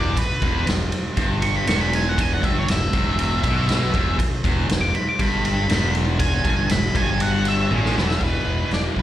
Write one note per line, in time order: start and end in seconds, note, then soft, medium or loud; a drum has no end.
0.00 0.15 E1 medium
0.00 0.16 E2 loud
0.00 0.17 D5 medium
0.17 0.66 B4 loud
0.17 kick loud
0.17 ride medium
0.42 0.65 E1 medium
0.42 0.65 E2 loud
0.42 kick medium
0.42 ride medium
0.67 0.91 E1 medium
0.67 0.87 E2 medium
0.67 snare loud
0.67 ride medium
0.92 ride medium
1.17 1.64 G1 loud
1.17 1.67 G2 loud
1.17 kick medium
1.17 ride medium
1.42 1.55 C#6 medium
1.42 ride medium
1.57 1.68 B5 medium
1.67 2.39 E1 medium
1.67 2.42 E2 medium
1.67 1.81 C#6 medium
1.67 snare loud
1.67 ride loud
1.81 1.95 B5 medium
1.93 2.09 G#5 medium
1.93 ride medium
2.09 2.21 F#5 medium
2.18 2.32 G#5 medium
2.18 kick loud
2.18 ride loud
2.34 2.45 F#5 medium
2.43 2.67 G1 medium
2.43 2.67 G2 loud
2.43 2.56 E5 medium
2.43 kick medium
2.43 ride medium
2.59 2.69 C#5 medium
2.68 2.92 E1 medium
2.68 2.88 E2 medium
2.68 4.16 E5 medium
2.68 snare loud
2.68 ride medium
2.93 3.40 E1 medium
2.93 3.43 E2 medium
2.93 kick loud
2.93 ride medium
3.19 ride medium
3.43 3.91 B1 loud
3.43 3.93 B2 loud
3.43 kick loud
3.43 ride medium
3.69 snare loud
3.69 ride medium
3.94 4.17 E1 medium
3.94 4.18 E2 medium
3.94 kick loud
3.94 ride medium
4.19 kick loud
4.19 ride medium
4.44 4.68 E1 loud
4.44 4.68 E2 loud
4.44 kick loud
4.44 ride medium
4.69 4.92 E1 medium
4.69 4.89 E2 medium
4.69 snare loud
4.69 ride medium
4.81 4.94 D6 loud
4.95 5.07 B5 medium
4.95 ride medium
5.09 5.21 D6 loud
5.19 5.66 G1 medium
5.19 5.68 G2 loud
5.19 5.43 B5 loud
5.19 kick medium
5.19 ride medium
5.45 5.93 B5 loud
5.45 ride medium
5.69 6.41 E1 loud
5.69 6.43 E2 medium
5.69 snare loud
5.69 ride medium
5.95 ride medium
6.19 6.69 G#5 loud
6.19 kick loud
6.19 ride medium
6.44 6.68 G1 medium
6.44 6.69 G2 loud
6.44 kick loud
6.44 ride medium
6.69 6.94 E1 medium
6.69 6.90 E2 medium
6.69 6.95 B5 medium
6.69 snare loud
6.69 ride loud
6.94 7.67 G1 medium
6.94 7.70 G2 medium
6.94 7.20 G#5 medium
6.94 kick medium
6.94 ride medium
7.20 7.46 F#5 medium
7.20 ride medium
7.45 8.20 E5 medium
7.45 ride medium
7.69 7.94 A1 medium
7.69 7.95 A2 loud
7.69 high tom medium
7.75 7.96 G#4 medium
7.86 snare medium
7.95 8.19 E1 medium
7.95 8.18 E2 medium
7.95 8.05 B4 medium
7.95 snare medium
8.11 snare loud
8.19 8.37 E1 medium
8.19 9.02 E2 medium
8.19 9.02 B2 medium
8.19 9.02 E3 medium
8.19 kick loud
8.19 open hi-hat soft
8.23 8.69 B4 loud
8.47 8.63 E1 medium
8.71 8.87 E1 medium
8.71 8.80 D5 medium
8.71 snare loud
8.71 open hi-hat soft
8.96 9.02 B1 medium
8.96 kick medium